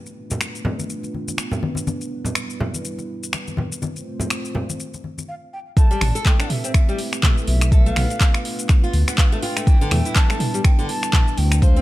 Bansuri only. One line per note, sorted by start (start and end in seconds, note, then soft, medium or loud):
5.28 5.34 F5 medium
5.53 5.59 G5 medium
5.77 6.27 A5 loud
6.26 6.52 G5 loud
6.51 7.24 E5 medium
7.48 7.71 E5 loud
7.73 7.89 E5 loud
7.89 8.66 F5 loud
9.18 9.24 F5 loud
9.43 10.17 G5 loud
10.16 10.66 A5 loud
10.65 10.88 G5 loud
10.89 11.40 A5 loud
11.38 11.64 G5 loud
11.62 11.82 F5 loud